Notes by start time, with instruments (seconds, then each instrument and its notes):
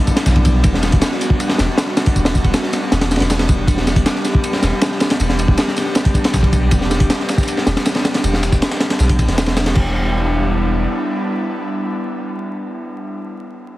Already playing: analog synth pad G3 B3 D4 E4
0.07 kick, ride, tambourine
0.16 snare, closed hi-hat, ride
0.26 sub bass B1, kick, snare, tambourine
0.36 kick, ride
0.45 kick, ride, tambourine
0.64 sub bass E1, analog synth pad F#4, kick, ride, tambourine
0.74 snare
0.83 snare, ride, tambourine
0.92 sub bass E1, kick, closed hi-hat
1.01 snare, ride, tambourine
1.12 snare
1.21 snare, ride, tambourine
1.30 kick
1.40 ride, tambourine
1.49 snare
1.58 sub bass E1, snare, ride, tambourine
1.77 snare, ride, tambourine
1.88 snare
1.97 snare, ride, tambourine
2.06 kick, closed hi-hat
2.16 sub bass E1, kick, ride, tambourine
2.25 snare, ride
2.35 kick, tambourine
2.44 sub bass E1, kick, ride
2.54 snare, ride, tambourine
2.63 snare
2.73 snare, ride, tambourine
2.92 sub bass E1, snare, ride, tambourine
3.01 snare, closed hi-hat, ride
3.11 snare, ride, tambourine
3.16 snare, ride
3.20 sub bass E1, snare, closed hi-hat, ride
3.30 snare, ride, tambourine
3.39 snare, ride
3.49 kick, ride, tambourine
3.67 sub bass E1, analog synth pad D4 G4, kick, ride, tambourine
3.77 snare
3.87 snare, ride, tambourine
3.96 sub bass E1, kick, closed hi-hat
4.06 snare, ride, tambourine
4.16 snare
4.24 snare, ride, tambourine
4.35 kick
4.44 ride, tambourine
4.53 snare
4.62 sub bass E1, snare, ride, tambourine
4.81 snare, ride, tambourine
4.91 snare
5.00 snare, ride, tambourine
5.10 snare, closed hi-hat, ride
5.20 sub bass E1, ride, tambourine
5.29 snare
5.39 ride, tambourine
5.48 sub bass E1, kick
5.58 snare, ride, tambourine
5.68 snare
5.77 snare, ride, tambourine
5.95 snare, ride, tambourine
6.05 kick, closed hi-hat
6.14 kick, ride, tambourine
6.24 snare, closed hi-hat, ride
6.34 sub bass B1, kick, snare, tambourine
6.43 kick, ride
6.53 kick, ride, tambourine
6.71 sub bass E1, kick, ride, tambourine
6.81 snare
6.91 snare, ride, tambourine
7.00 sub bass E1, kick, closed hi-hat
7.10 snare, ride, tambourine
7.20 snare
7.29 snare, ride, tambourine
7.38 kick, snare, tambourine
7.43 snare, tambourine
7.48 ride, tambourine
7.57 snare
7.67 sub bass E1, snare, ride, tambourine
7.77 snare, ride
7.86 snare, ride, tambourine
7.95 snare, ride
8.05 snare, ride, tambourine
8.14 snare, closed hi-hat, ride
8.24 sub bass E1, ride, tambourine
8.34 snare
8.43 snare, ride, tambourine
8.52 sub bass E1, kick, snare, tambourine
8.62 snare, ride, tambourine
8.71 snare, tambourine
8.80 snare, ride, tambourine
8.90 snare, ride, tambourine
8.99 sub bass B1, snare, ride, tambourine
9.09 kick, closed hi-hat
9.19 sub bass A1, kick, ride, tambourine
9.28 sub bass E1, snare, closed hi-hat
9.38 snare, ride, tambourine
9.46 snare, ride
9.57 snare, ride, tambourine
9.66 snare, ride
9.75 sub bass E1, analog synth pad G3 B3 D4 E4, kick, crash